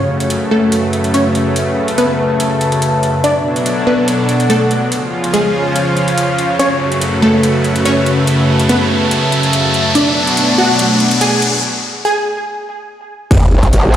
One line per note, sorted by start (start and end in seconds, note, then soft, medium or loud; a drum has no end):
0.00 3.20 F#2 medium
0.00 3.20 C#3 medium
0.00 3.20 A3 medium
0.00 0.43 C#4 medium
0.00 3.80 F#4 medium
0.00 0.43 C#5 medium
0.00 1.23 C#5 medium
0.00 riser medium
0.14 3.91 B4 medium
0.20 closed hi-hat soft
0.30 closed hi-hat medium
0.51 1.06 A3 medium
0.51 1.06 A4 medium
0.51 3.91 E5 medium
0.72 closed hi-hat medium
0.93 closed hi-hat medium
1.04 closed hi-hat soft
1.14 1.90 C#4 medium
1.14 1.90 C#5 medium
1.14 closed hi-hat medium
1.35 closed hi-hat medium
1.39 3.91 A5 medium
1.56 closed hi-hat medium
1.88 closed hi-hat medium
1.98 3.16 B3 medium
1.98 3.16 B4 medium
1.98 closed hi-hat medium
2.40 closed hi-hat medium
2.61 closed hi-hat medium
2.72 closed hi-hat medium
2.82 closed hi-hat medium
3.03 closed hi-hat medium
3.24 4.90 B2 medium
3.24 4.90 F#3 medium
3.24 5.59 B3 medium
3.24 3.79 D4 medium
3.24 4.90 D4 medium
3.24 3.79 D5 loud
3.24 closed hi-hat medium
3.36 4.92 A4 medium
3.36 4.92 D5 medium
3.56 closed hi-hat soft
3.66 closed hi-hat medium
3.87 4.42 B3 medium
3.87 4.42 B4 medium
4.00 4.92 F#5 medium
4.08 closed hi-hat medium
4.29 closed hi-hat medium
4.40 closed hi-hat soft
4.50 5.26 A3 medium
4.50 5.26 A4 medium
4.50 closed hi-hat medium
4.71 closed hi-hat medium
4.92 6.58 C#3 medium
4.92 6.58 F3 medium
4.92 6.58 F4 medium
4.92 6.60 G#5 medium
4.92 closed hi-hat medium
5.04 7.94 C#5 medium
5.24 closed hi-hat soft
5.34 6.52 G#3 medium
5.34 6.52 G#4 medium
5.34 closed hi-hat medium
5.68 6.60 F5 medium
5.76 closed hi-hat medium
5.97 closed hi-hat soft
6.08 closed hi-hat soft
6.18 closed hi-hat medium
6.38 closed hi-hat soft
6.59 9.92 F#2 medium
6.59 9.92 C#3 medium
6.59 9.92 A3 medium
6.59 7.15 C#4 medium
6.59 10.51 F#4 medium
6.59 7.15 C#5 loud
6.59 closed hi-hat medium
6.76 10.54 B4 medium
6.92 closed hi-hat soft
7.01 closed hi-hat medium
7.22 7.78 A3 medium
7.22 7.78 A4 loud
7.29 10.63 E5 medium
7.43 closed hi-hat medium
7.64 closed hi-hat soft
7.76 closed hi-hat soft
7.85 8.62 C#4 medium
7.85 8.61 C#5 medium
7.85 closed hi-hat medium
8.06 closed hi-hat soft
8.11 10.63 A5 medium
8.27 closed hi-hat medium
8.59 closed hi-hat soft
8.69 9.87 B3 medium
8.69 9.87 B4 medium
8.69 closed hi-hat medium
9.11 closed hi-hat medium
9.32 closed hi-hat soft
9.43 closed hi-hat soft
9.53 closed hi-hat medium
9.74 closed hi-hat soft
9.95 11.61 B2 medium
9.95 11.61 F#3 medium
9.95 11.63 B3 medium
9.95 11.61 D4 medium
9.95 10.50 D4 medium
9.95 10.50 D5 loud
9.95 closed hi-hat medium
10.08 11.63 A3 medium
10.27 closed hi-hat soft
10.37 closed hi-hat medium
10.58 11.13 F#4 medium
10.58 11.13 F#5 loud
10.71 11.63 D5 medium
10.71 11.63 F#5 medium
10.79 closed hi-hat medium
11.00 closed hi-hat medium
11.11 closed hi-hat soft
11.21 11.97 G#4 medium
11.21 11.97 G#5 medium
11.21 closed hi-hat medium
11.42 closed hi-hat medium
12.05 13.23 G#4 medium
12.05 13.23 G#5 medium
13.31 13.71 F#1 loud
13.31 13.97 F#3 medium
13.31 13.97 C#4 medium
13.31 13.97 F#4 medium
13.31 13.97 C#5 medium
13.31 kick loud
13.31 closed hi-hat medium
13.31 crash loud
13.31 sub drop medium
13.63 kick medium
13.63 closed hi-hat medium
13.73 13.97 A1 medium
13.73 closed hi-hat medium